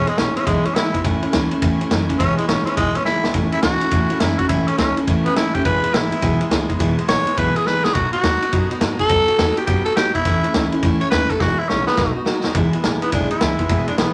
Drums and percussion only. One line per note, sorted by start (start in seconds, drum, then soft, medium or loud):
0.07 ride medium
0.18 snare loud
0.18 ride medium
0.37 ride medium
0.47 kick loud
0.47 ride medium
0.65 ride medium
0.76 snare loud
0.76 ride medium
0.94 kick medium
0.94 ride medium
1.05 kick loud
1.05 ride medium
1.23 ride medium
1.33 snare loud
1.33 ride medium
1.51 ride medium
1.62 kick loud
1.62 ride loud
1.81 ride medium
1.91 snare loud
1.91 ride medium
2.09 kick medium
2.09 ride medium
2.20 kick loud
2.20 ride loud
2.38 ride medium
2.49 snare loud
2.49 ride medium
2.67 ride medium
2.77 kick loud
2.77 ride medium
2.95 ride medium
3.05 snare medium
3.24 snare medium
3.34 kick loud
3.34 ride medium
3.52 ride medium
3.63 snare loud
3.63 ride medium
3.81 ride medium
3.91 kick loud
3.91 ride loud
4.10 ride medium
4.20 snare loud
4.20 ride loud
4.39 kick medium
4.39 ride medium
4.49 kick loud
4.49 ride loud
4.68 ride medium
4.78 snare loud
4.78 ride medium
4.97 ride medium
5.07 kick loud
5.07 ride medium
5.26 ride medium
5.36 snare loud
5.36 ride medium
5.55 kick medium
5.55 ride medium
5.65 kick loud
5.65 ride medium
5.84 ride medium
5.94 snare loud
5.94 ride medium
6.12 ride medium
6.22 kick loud
6.22 ride medium
6.41 ride medium
6.51 snare loud
6.51 ride medium
6.70 kick medium
6.70 ride medium
6.80 kick loud
6.80 ride loud
6.98 ride medium
7.08 snare loud
7.08 ride medium
7.27 ride medium
7.37 kick loud
7.37 ride loud
7.56 ride medium
7.66 snare medium
7.84 snare medium
7.95 kick loud
7.95 ride medium
8.13 ride medium
8.23 snare loud
8.23 ride medium
8.42 ride medium
8.53 kick loud
8.53 ride medium
8.71 ride medium
8.81 snare loud
8.81 ride medium
8.99 kick medium
8.99 ride medium
9.09 kick loud
9.09 ride loud
9.28 ride medium
9.39 snare loud
9.39 ride medium
9.57 ride medium
9.67 kick loud
9.67 ride loud
9.86 ride medium
9.97 snare loud
9.97 ride medium
10.15 kick medium
10.15 ride medium
10.25 kick loud
10.25 ride loud
10.44 ride medium
10.54 snare loud
10.54 ride medium
10.72 ride medium
10.83 kick loud
10.83 ride medium
11.01 ride medium
11.11 snare loud
11.11 ride medium
11.30 kick medium
11.30 ride medium
11.40 kick loud
11.40 snare medium
11.69 snare medium
11.87 snare medium
11.97 kick loud
11.97 snare medium
12.26 snare medium
12.44 snare medium
12.55 kick loud
12.55 ride medium
12.73 ride medium
12.84 snare loud
12.84 ride medium
13.02 ride medium
13.12 kick loud
13.12 ride medium
13.31 ride medium
13.41 snare loud
13.41 ride medium
13.59 kick medium
13.59 ride medium
13.69 kick loud
13.69 ride loud
13.88 ride medium
13.98 snare loud
13.98 ride medium